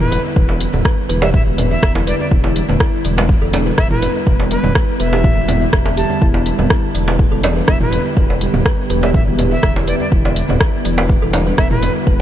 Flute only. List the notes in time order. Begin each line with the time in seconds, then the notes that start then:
0.00 B4
1.22 E5
1.34 E5
1.71 E5
2.07 D5
2.20 D5
3.78 E5
3.90 B4
4.51 B4
5.00 E5
5.97 A5
7.68 E5
7.81 B4
9.03 E5
9.15 E5
9.51 E5
9.87 D5
10.00 D5
11.58 E5
11.71 B4